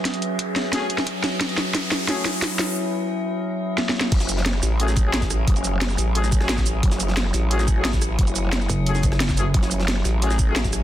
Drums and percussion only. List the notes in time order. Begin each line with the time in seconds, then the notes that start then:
0.05 kick, snare, closed hi-hat
0.14 closed hi-hat
0.22 closed hi-hat
0.39 kick, closed hi-hat
0.56 snare, closed hi-hat
0.73 kick, snare, closed hi-hat
0.90 closed hi-hat
0.98 snare, closed hi-hat
1.07 kick, closed hi-hat
1.24 snare, closed hi-hat
1.41 kick, snare, closed hi-hat
1.49 closed hi-hat
1.58 snare, closed hi-hat
1.75 kick, snare, closed hi-hat
1.92 snare, closed hi-hat
2.08 kick, snare, closed hi-hat
2.25 snare, closed hi-hat
2.42 kick, snare, closed hi-hat
2.59 snare, closed hi-hat
3.78 snare
3.89 snare
4.01 snare
4.12 kick, closed hi-hat, crash
4.20 snare, closed hi-hat, shaker
4.29 closed hi-hat, shaker
4.37 snare
4.46 snare, closed hi-hat
4.54 cross-stick
4.63 snare, closed hi-hat, shaker
4.80 closed hi-hat
4.88 snare, shaker
4.97 kick, closed hi-hat, shaker
5.14 snare, closed hi-hat
5.22 kick, snare, shaker
5.30 cross-stick, closed hi-hat, shaker
5.47 kick, closed hi-hat
5.56 closed hi-hat, shaker
5.64 closed hi-hat, shaker
5.81 snare, closed hi-hat
5.90 cross-stick, shaker
5.98 closed hi-hat, shaker
6.15 closed hi-hat
6.24 snare, shaker
6.32 kick, closed hi-hat, shaker
6.41 cross-stick, snare
6.49 snare, closed hi-hat
6.58 kick, snare, shaker
6.66 closed hi-hat, shaker
6.83 kick, closed hi-hat
6.92 snare, closed hi-hat, shaker
7.00 closed hi-hat, shaker
7.08 snare
7.17 snare, closed hi-hat
7.25 cross-stick
7.34 snare, closed hi-hat, shaker
7.51 closed hi-hat
7.59 snare, shaker
7.68 kick, closed hi-hat, shaker
7.85 snare, closed hi-hat
7.93 kick, snare, shaker
8.02 cross-stick, closed hi-hat, shaker
8.19 kick, closed hi-hat
8.27 closed hi-hat, shaker
8.36 closed hi-hat, shaker
8.52 snare, closed hi-hat
8.61 cross-stick, shaker
8.69 closed hi-hat, shaker
8.86 closed hi-hat
8.95 snare, shaker
9.03 kick, closed hi-hat, shaker
9.12 cross-stick, snare
9.20 snare, closed hi-hat
9.29 kick, snare, shaker
9.37 closed hi-hat, shaker
9.54 kick, closed hi-hat
9.63 snare, closed hi-hat, shaker
9.71 closed hi-hat, shaker
9.80 snare
9.88 snare, closed hi-hat
9.97 cross-stick
10.05 snare, closed hi-hat, shaker
10.22 closed hi-hat
10.31 snare, shaker
10.39 kick, closed hi-hat, shaker
10.56 snare, closed hi-hat
10.64 kick, snare, shaker
10.73 cross-stick, closed hi-hat, shaker